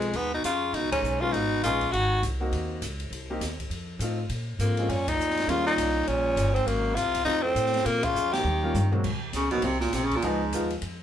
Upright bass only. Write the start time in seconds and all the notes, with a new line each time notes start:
Already playing: B1
0.14 D#2
0.44 F2
0.73 C#2
1.02 B1
1.33 G#1
1.63 A#1
1.94 G#1
2.23 C2
2.51 D#2
2.82 C#2
3.10 C2
3.40 D#2
3.70 F2
3.99 A2
4.29 A#2
4.59 G#2
4.89 F#2
5.18 F2
5.47 D#2
5.78 C2
6.08 A#1
6.36 G1
6.66 G#1
6.96 C2
7.25 F2
7.55 A2
7.85 A#2
8.15 F2
8.44 D#2
8.74 G2
9.03 D#2
9.33 C#2
9.63 C2
9.93 A#1
10.22 C#2
10.52 D#2
10.82 F2